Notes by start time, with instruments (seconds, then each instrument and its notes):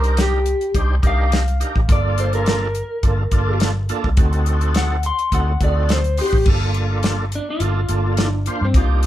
Already playing: fingered electric bass C2, tonewheel organ D4 D#4 G4 A#4, clean electric guitar A#4
0.04 closed hi-hat
0.17 clean electric guitar G4, snare, closed hi-hat
0.46 closed hi-hat
0.61 closed hi-hat
0.75 fingered electric bass C2, tonewheel organ D4 D#4 G4 C5, kick, closed hi-hat
1.03 fingered electric bass C2, tonewheel organ D4 D#4 G4 A#4, kick, closed hi-hat
1.07 clean electric guitar F5
1.32 snare, closed hi-hat
1.48 closed hi-hat
1.60 tonewheel organ D4 D#4 G4 A#4, closed hi-hat
1.76 fingered electric bass A1, kick
1.88 fingered electric bass G1, tonewheel organ A#3 D4 F4 A4, kick, closed hi-hat
1.92 clean electric guitar D5
2.18 clean electric guitar C5, closed hi-hat
2.33 clean electric guitar A#4, closed hi-hat
2.46 clean electric guitar A#4, snare, closed hi-hat
2.75 closed hi-hat
3.03 fingered electric bass G1, tonewheel organ A#3 D4 F4 A4, kick, closed hi-hat
3.31 fingered electric bass G1, tonewheel organ A#3 D4 F4 A4, kick, closed hi-hat
3.60 snare, closed hi-hat
3.89 tonewheel organ A#3 D4 F4 A4, closed hi-hat
4.04 fingered electric bass C2, kick
4.17 fingered electric bass D2, tonewheel organ C4 D#4 F#4 A4, kick, closed hi-hat
4.33 closed hi-hat
4.46 closed hi-hat
4.61 closed hi-hat
4.74 clean electric guitar F#5, snare, closed hi-hat
5.03 clean electric guitar C6, closed hi-hat
5.19 closed hi-hat
5.32 fingered electric bass D2, tonewheel organ C4 D#4 F#4 A4, clean electric guitar F#5, kick, closed hi-hat
5.61 fingered electric bass D2, tonewheel organ C4 D#4 F#4 A4, clean electric guitar D5, kick, closed hi-hat
5.89 snare, closed hi-hat
5.93 clean electric guitar C5
6.04 closed hi-hat
6.17 tonewheel organ C4 D#4 F#4 C5, open hi-hat
6.21 clean electric guitar G4
6.33 fingered electric bass A1, kick
6.46 fingered electric bass G1, tonewheel organ A#3 D4 F4 A4, kick, crash
6.74 closed hi-hat
7.03 snare, closed hi-hat
7.32 clean electric guitar D4, closed hi-hat
7.50 clean electric guitar F4
7.60 fingered electric bass G1, tonewheel organ A#3 D4 F4 A4, closed hi-hat
7.89 fingered electric bass G1, tonewheel organ A#3 D4 F4 A4, closed hi-hat
8.17 snare, closed hi-hat
8.29 clean electric guitar D4
8.46 tonewheel organ A#3 D4 F4 C5, closed hi-hat
8.61 fingered electric bass G2, clean electric guitar C4
8.74 fingered electric bass C2, tonewheel organ A#3 D4 D#4 G4, clean electric guitar F4, kick, closed hi-hat
9.03 closed hi-hat